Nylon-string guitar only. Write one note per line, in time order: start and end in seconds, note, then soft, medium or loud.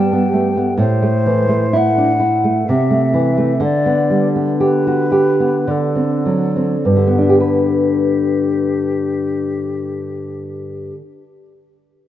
0.00 0.75 G2 medium
0.00 0.26 G3 soft
0.13 0.48 B3 medium
0.34 0.56 A3 soft
0.57 0.79 B3 soft
0.78 2.63 A2 medium
1.02 1.41 A3 soft
1.26 1.65 E3 soft
1.49 1.88 A3 soft
1.73 2.12 E4 medium
1.98 2.21 D4 soft
2.20 2.57 E4 soft
2.44 2.68 A3 soft
2.69 3.59 C3 medium
2.90 3.28 A3 soft
3.14 3.52 E3 soft
3.38 3.62 A3 soft
3.60 5.65 D3 medium
3.86 4.26 B3 soft
4.10 4.51 G3 soft
4.36 4.77 B3 soft
4.60 5.03 G4 medium
4.87 5.14 F#4 soft
5.12 5.57 G4 soft
5.40 5.69 B3 soft
5.67 6.84 D3 medium
5.95 6.46 C4 soft
6.26 6.76 F#3 soft
6.56 6.87 C4 soft
6.85 10.90 G2 soft
6.96 11.01 D3 soft
7.07 11.12 B3 soft
7.18 11.23 D4 soft
7.29 7.40 G4 soft
7.40 11.45 B4 soft